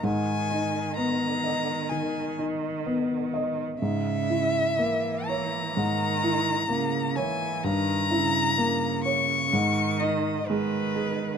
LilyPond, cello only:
\new Staff \with { instrumentName = "Cello" } { \clef bass \time 4/4 \key gis \minor \tempo 4 = 63 dis1 | cis4 e4 dis4 cis8 e8 | dis8 des8 des4 dis4 dis4 | }